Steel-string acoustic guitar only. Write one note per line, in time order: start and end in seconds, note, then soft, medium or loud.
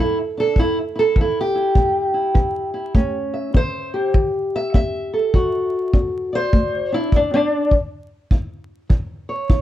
0.00 0.52 F#3 medium
0.00 0.18 E4 medium
0.37 0.55 D4 soft
0.37 0.58 A4 loud
0.58 1.12 A2 medium
0.58 0.77 E4 medium
0.95 1.20 E4 soft
0.95 1.17 A4 medium
1.17 1.72 E3 medium
1.21 1.38 E4 loud
1.41 3.17 G4 medium
1.55 2.13 E4 soft
1.75 2.31 A2 medium
2.14 2.73 E4 soft
2.34 2.90 E3 medium
2.74 2.92 E4 soft
2.95 3.50 A3 medium
2.95 3.53 C#4 medium
3.34 4.53 E5 soft
3.54 4.10 C#4 medium
3.54 4.15 C5 loud
3.94 5.31 G4 soft
4.14 4.70 E3 medium
4.56 4.74 E5 medium
4.74 5.29 C#4 medium
4.74 5.94 E5 medium
5.14 6.35 A4 soft
5.34 5.89 D3 medium
5.34 6.93 F#4 medium
5.93 6.49 D4 medium
6.33 6.94 C5 loud
6.33 7.70 D5 soft
6.53 7.08 A3 medium
6.92 7.13 D4 soft
6.92 7.13 E4 medium
7.16 7.33 D4 medium
7.34 7.73 D4 loud
8.32 8.87 E4 medium
8.89 9.45 E3 medium
9.29 9.62 C#5 medium
9.50 9.62 E4 medium